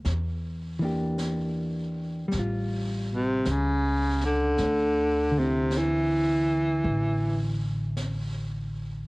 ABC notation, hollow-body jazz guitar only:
X:1
M:4/4
L:1/8
Q:"Swing" 1/4=53
K:Dm
V:1 name="Hollow-body jazz guitar"
z [E,B,DG]3 [G,^E]4 | z [D,CE]6- [D,CE] |]